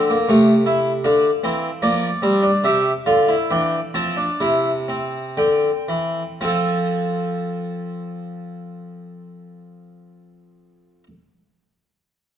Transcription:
0, 0, Header, 1, 2, 480
1, 0, Start_track
1, 0, Key_signature, -1, "major"
1, 0, Tempo, 755668
1, 667, Tempo, 800000
1, 1627, Tempo, 877193
1, 1628, Time_signature, 4, 2, 24, 8
1, 2587, Tempo, 963082
1, 3067, Tempo, 1043478
1, 3547, Tempo, 1075269
1, 6208, End_track
2, 0, Start_track
2, 0, Title_t, "Harpsichord"
2, 0, Program_c, 0, 6
2, 0, Note_on_c, 0, 50, 88
2, 0, Note_on_c, 0, 69, 95
2, 63, Note_on_c, 0, 58, 100
2, 94, Note_off_c, 0, 50, 0
2, 180, Note_off_c, 0, 58, 0
2, 182, Note_on_c, 0, 57, 104
2, 183, Note_on_c, 0, 48, 91
2, 332, Note_off_c, 0, 57, 0
2, 420, Note_on_c, 0, 64, 105
2, 572, Note_off_c, 0, 64, 0
2, 642, Note_off_c, 0, 69, 0
2, 652, Note_off_c, 0, 48, 0
2, 662, Note_on_c, 0, 62, 107
2, 664, Note_on_c, 0, 50, 94
2, 665, Note_on_c, 0, 77, 93
2, 809, Note_off_c, 0, 62, 0
2, 810, Note_off_c, 0, 50, 0
2, 898, Note_on_c, 0, 60, 100
2, 901, Note_on_c, 0, 52, 96
2, 1046, Note_off_c, 0, 60, 0
2, 1048, Note_off_c, 0, 52, 0
2, 1123, Note_off_c, 0, 77, 0
2, 1131, Note_on_c, 0, 53, 94
2, 1132, Note_on_c, 0, 74, 100
2, 1133, Note_on_c, 0, 58, 106
2, 1283, Note_off_c, 0, 53, 0
2, 1284, Note_off_c, 0, 58, 0
2, 1370, Note_on_c, 0, 60, 109
2, 1374, Note_on_c, 0, 55, 98
2, 1492, Note_on_c, 0, 62, 97
2, 1495, Note_off_c, 0, 60, 0
2, 1529, Note_off_c, 0, 55, 0
2, 1610, Note_off_c, 0, 74, 0
2, 1618, Note_off_c, 0, 62, 0
2, 1620, Note_on_c, 0, 48, 95
2, 1623, Note_on_c, 0, 67, 98
2, 1624, Note_on_c, 0, 76, 99
2, 1766, Note_off_c, 0, 48, 0
2, 1768, Note_off_c, 0, 67, 0
2, 1768, Note_off_c, 0, 76, 0
2, 1853, Note_on_c, 0, 65, 94
2, 1853, Note_on_c, 0, 77, 94
2, 1854, Note_on_c, 0, 50, 94
2, 1970, Note_off_c, 0, 65, 0
2, 1974, Note_on_c, 0, 64, 88
2, 2001, Note_off_c, 0, 77, 0
2, 2002, Note_off_c, 0, 50, 0
2, 2090, Note_off_c, 0, 64, 0
2, 2095, Note_on_c, 0, 52, 95
2, 2096, Note_on_c, 0, 62, 92
2, 2097, Note_on_c, 0, 79, 94
2, 2246, Note_off_c, 0, 52, 0
2, 2247, Note_off_c, 0, 62, 0
2, 2247, Note_off_c, 0, 79, 0
2, 2334, Note_on_c, 0, 60, 95
2, 2335, Note_on_c, 0, 53, 88
2, 2337, Note_on_c, 0, 81, 94
2, 2456, Note_off_c, 0, 60, 0
2, 2458, Note_on_c, 0, 62, 90
2, 2491, Note_off_c, 0, 53, 0
2, 2582, Note_off_c, 0, 62, 0
2, 2587, Note_on_c, 0, 48, 92
2, 2587, Note_on_c, 0, 64, 96
2, 2733, Note_off_c, 0, 64, 0
2, 2826, Note_on_c, 0, 60, 88
2, 3047, Note_off_c, 0, 81, 0
2, 3053, Note_off_c, 0, 48, 0
2, 3070, Note_on_c, 0, 50, 91
2, 3070, Note_on_c, 0, 79, 93
2, 3215, Note_off_c, 0, 50, 0
2, 3305, Note_on_c, 0, 52, 92
2, 3456, Note_off_c, 0, 52, 0
2, 3531, Note_off_c, 0, 60, 0
2, 3534, Note_off_c, 0, 79, 0
2, 3546, Note_on_c, 0, 53, 80
2, 3547, Note_on_c, 0, 60, 77
2, 3547, Note_on_c, 0, 72, 77
2, 3560, Note_on_c, 0, 65, 70
2, 3560, Note_on_c, 0, 69, 72
2, 5611, Note_off_c, 0, 53, 0
2, 5612, Note_off_c, 0, 60, 0
2, 5612, Note_off_c, 0, 72, 0
2, 5625, Note_off_c, 0, 65, 0
2, 5625, Note_off_c, 0, 69, 0
2, 6208, End_track
0, 0, End_of_file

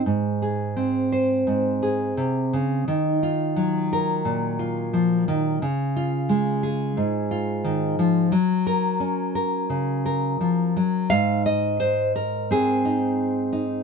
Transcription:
0, 0, Header, 1, 2, 480
1, 0, Start_track
1, 0, Tempo, 700935
1, 40, Time_signature, 4, 2, 24, 8
1, 2439, Tempo, 677966
1, 6279, Tempo, 698487
1, 9609, End_track
2, 0, Start_track
2, 0, Title_t, "Nylon-string guitar"
2, 0, Program_c, 0, 24
2, 41, Note_on_c, 0, 44, 57
2, 289, Note_on_c, 0, 68, 44
2, 524, Note_on_c, 0, 60, 51
2, 770, Note_on_c, 0, 72, 45
2, 998, Note_off_c, 0, 44, 0
2, 1006, Note_on_c, 0, 44, 53
2, 1242, Note_off_c, 0, 68, 0
2, 1250, Note_on_c, 0, 68, 47
2, 1486, Note_off_c, 0, 44, 0
2, 1488, Note_on_c, 0, 48, 51
2, 1728, Note_off_c, 0, 48, 0
2, 1735, Note_on_c, 0, 49, 54
2, 1937, Note_off_c, 0, 60, 0
2, 1938, Note_off_c, 0, 68, 0
2, 1940, Note_off_c, 0, 72, 0
2, 1968, Note_off_c, 0, 49, 0
2, 1971, Note_on_c, 0, 51, 64
2, 2211, Note_on_c, 0, 65, 49
2, 2441, Note_on_c, 0, 54, 57
2, 2698, Note_on_c, 0, 70, 51
2, 2927, Note_on_c, 0, 46, 60
2, 3160, Note_off_c, 0, 65, 0
2, 3169, Note_on_c, 0, 65, 52
2, 3408, Note_off_c, 0, 51, 0
2, 3410, Note_on_c, 0, 53, 53
2, 3652, Note_off_c, 0, 53, 0
2, 3656, Note_on_c, 0, 51, 57
2, 3866, Note_off_c, 0, 46, 0
2, 3867, Note_off_c, 0, 65, 0
2, 3872, Note_off_c, 0, 70, 0
2, 3894, Note_off_c, 0, 54, 0
2, 3895, Note_off_c, 0, 51, 0
2, 3897, Note_on_c, 0, 49, 63
2, 4140, Note_on_c, 0, 65, 51
2, 4372, Note_on_c, 0, 56, 54
2, 4612, Note_on_c, 0, 68, 47
2, 4848, Note_off_c, 0, 49, 0
2, 4853, Note_on_c, 0, 44, 58
2, 5084, Note_off_c, 0, 65, 0
2, 5093, Note_on_c, 0, 65, 48
2, 5330, Note_on_c, 0, 51, 52
2, 5563, Note_off_c, 0, 51, 0
2, 5573, Note_on_c, 0, 53, 58
2, 5768, Note_off_c, 0, 56, 0
2, 5773, Note_off_c, 0, 65, 0
2, 5798, Note_off_c, 0, 68, 0
2, 5800, Note_off_c, 0, 44, 0
2, 5804, Note_off_c, 0, 53, 0
2, 5808, Note_on_c, 0, 54, 65
2, 6053, Note_on_c, 0, 70, 55
2, 6290, Note_on_c, 0, 61, 52
2, 6523, Note_off_c, 0, 70, 0
2, 6531, Note_on_c, 0, 70, 48
2, 6767, Note_on_c, 0, 49, 54
2, 7007, Note_off_c, 0, 70, 0
2, 7015, Note_on_c, 0, 70, 54
2, 7251, Note_off_c, 0, 49, 0
2, 7255, Note_on_c, 0, 53, 47
2, 7494, Note_off_c, 0, 54, 0
2, 7497, Note_off_c, 0, 53, 0
2, 7502, Note_on_c, 0, 54, 52
2, 7711, Note_off_c, 0, 61, 0
2, 7713, Note_off_c, 0, 70, 0
2, 7731, Note_on_c, 0, 77, 95
2, 7740, Note_off_c, 0, 54, 0
2, 7741, Note_on_c, 0, 44, 66
2, 7974, Note_off_c, 0, 77, 0
2, 7978, Note_on_c, 0, 75, 84
2, 8212, Note_on_c, 0, 72, 80
2, 8453, Note_off_c, 0, 72, 0
2, 8458, Note_on_c, 0, 70, 78
2, 8695, Note_off_c, 0, 75, 0
2, 8699, Note_on_c, 0, 60, 59
2, 8706, Note_on_c, 0, 68, 69
2, 8932, Note_off_c, 0, 70, 0
2, 8935, Note_on_c, 0, 63, 44
2, 9391, Note_off_c, 0, 63, 0
2, 9399, Note_on_c, 0, 63, 46
2, 9609, Note_off_c, 0, 44, 0
2, 9609, Note_off_c, 0, 60, 0
2, 9609, Note_off_c, 0, 63, 0
2, 9609, Note_off_c, 0, 68, 0
2, 9609, End_track
0, 0, End_of_file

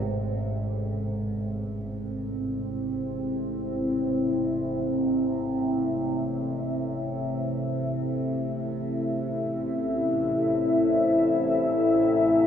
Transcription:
0, 0, Header, 1, 5, 480
1, 0, Start_track
1, 0, Key_signature, 0, "minor"
1, 0, Tempo, 500000
1, 11970, End_track
2, 0, Start_track
2, 0, Title_t, "Singing bowl"
2, 0, Program_c, 0, 14
2, 24, Note_on_c, 0, 69, 69
2, 11970, Note_off_c, 0, 69, 0
2, 11970, End_track
3, 0, Start_track
3, 0, Title_t, "Ambient pad"
3, 0, Program_c, 1, 92
3, 23, Note_on_c, 1, 60, 72
3, 1211, Note_on_c, 1, 64, 72
3, 2701, Note_on_c, 1, 69, 63
3, 3166, Note_on_c, 1, 76, 71
3, 11970, Note_off_c, 1, 60, 0
3, 11970, Note_off_c, 1, 64, 0
3, 11970, Note_off_c, 1, 69, 0
3, 11970, Note_off_c, 1, 76, 0
3, 11970, End_track
4, 0, Start_track
4, 0, Title_t, "Church bells"
4, 0, Program_c, 2, 14
4, 0, Note_on_c, 2, 44, 60
4, 1951, Note_off_c, 2, 44, 0
4, 11970, End_track
5, 0, Start_track
5, 0, Title_t, "Synth drone"
5, 0, Program_c, 3, 95
5, 47, Note_on_c, 3, 33, 84
5, 52, Note_on_c, 3, 48, 83
5, 11970, Note_off_c, 3, 33, 0
5, 11970, Note_off_c, 3, 48, 0
5, 11970, End_track
0, 0, End_of_file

